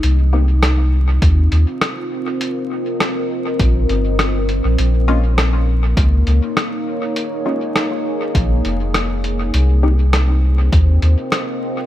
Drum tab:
HH |x-x-xxx-|x-x-xxxx|x-x-xxx-|x-x-xxxx|
SD |--r---r-|--r---r-|--r---r-|--r---r-|
BD |----o---|----o---|----o---|----o---|

HH |x-x-xxx-|
SD |--r---r-|
BD |----o---|